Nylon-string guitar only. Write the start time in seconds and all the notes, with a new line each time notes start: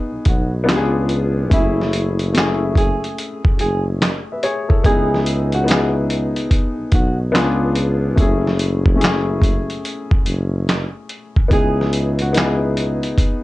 0.28 F#4
1.53 E4
2.78 G#4
3.61 G#4
4.86 G#4
5.54 F#4
6.94 F#4
11.53 G#4
12.22 F#4